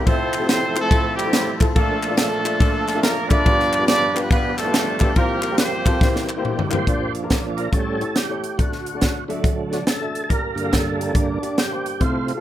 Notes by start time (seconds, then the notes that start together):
0.05 F1 F2 F3 A3 C4 E4 F4 A4 C5, kick, ride
0.33 clap, ride
0.40 A3 C4 E4 F4 G4
0.48 C4 E4 A4 C5, snare, ride
0.75 A3 C4 E4 F4 C5, clap, ride
0.81 A3 C4 E4 A4
0.91 A3 C4 E4 F4 C5, kick, ride
1.16 G3 C4 E4 G4, clap, ride
1.25 A3 C4 E4 F4 C5
1.33 snare, ride
1.60 A3 C4 E4 F4 A4, kick, clap, ride
1.75 A#1 A#2 F3 A3 A#3 D4 F4 A4 D5, kick, ride
2.03 clap, ride
2.09 A#3 D4 F4 A4 D5
2.17 A3 D4 F4 A4, snare, ride
2.44 A#3 D4 F4 A4 E5, clap, ride
2.59 A#3 D4 F4 A4 D5, kick, ride
2.88 snare, clap, ride
2.95 A#3 D4 F4 A4 E5
3.02 A#3 A#4, snare, ride
3.29 A#3 D4 F4 A4 B4 D5 E5, kick, clap, ride
3.45 G1 G2 F3 G3 A#3 B3 D4 F4 G4 D5, kick, ride
3.51 B3
3.60 snare
3.73 clap, ride
3.79 B3 D4 F4 G4 D5
3.87 D4 F4 B4 D5, snare, ride
4.14 B3 D4 F4 G4 B4, clap, ride
4.23 B3 B4
4.30 B3 D4 F4 G4 B4 F5, kick, ride
4.58 A3 D4 F4 A4, snare, clap, ride
4.65 B3 D4 F4 G4 B4
4.74 snare, ride
5.00 B3 D4 F4 G4 D5, kick, clap, ride
5.16 C2 C3 F3 G3 A#3 C4 F4 G4 A#4 C5, kick, ride
5.42 clap, ride
5.51 A#3 C4 F4 G4 A#4
5.58 C4 F4 G4 C5, snare, ride
5.86 A#3 C4 F4 G4 A4, kick, clap, ride
6.01 C2 C3 E3 G3 A#3 C4 E4 F#4 G4 C5, kick, snare
6.07 G4
6.16 snare
6.29 clap
6.37 A#3 C4 E4 G4 C5
6.45 D4 G4, mid tom
6.59 floor tom
6.70 A#3 C4 E4 G4 C5, clap, floor tom
6.87 A#1 A#2 F3 A#3 D4 F4 D5, kick, closed hi-hat
7.15 closed hi-hat
7.22 A#3 D4 F4 A#4
7.30 kick, snare, closed hi-hat
7.57 A#3 D4 F4 A#4 D5, closed hi-hat
7.72 A1 A2 G3 C#4 A4, kick, closed hi-hat
8.00 A3 E4 G4 C#5, closed hi-hat
8.16 G4, snare, closed hi-hat
8.29 A3 E4 G4 C#5
8.44 closed hi-hat
8.57 D2 D3 A3 D4 F#4 D5, kick, closed hi-hat
8.72 snare
8.86 closed hi-hat
8.94 A3 D4 F#4 D5
9.01 kick, snare, closed hi-hat
9.28 D3 F#3 A3 D4 F#4 E5, closed hi-hat
9.44 kick, closed hi-hat
9.71 A3 D4 F#4 D5, snare, closed hi-hat
9.87 A4, snare, closed hi-hat
10.00 A3 D4 F#4 E5
10.15 closed hi-hat
10.24 A4
10.29 G1 G2 A#3 D4 G4 A#4 D5, kick, closed hi-hat
10.55 G2 D3 A#3, closed hi-hat
10.64 A#3 D4 G4 F5
10.71 A4, kick, snare, closed hi-hat
10.98 A#3 D4 G4 D5, closed hi-hat
11.13 G2 D3 A#3 D4, kick, closed hi-hat
11.41 A#3 D4 G4 D5, closed hi-hat
11.58 G4, snare, closed hi-hat
11.70 A#3 D4 G4 C5
11.86 closed hi-hat
12.00 C2 C3 A3 C4 F4 C5, kick, closed hi-hat
12.28 closed hi-hat
12.35 A3 C4 F4 A4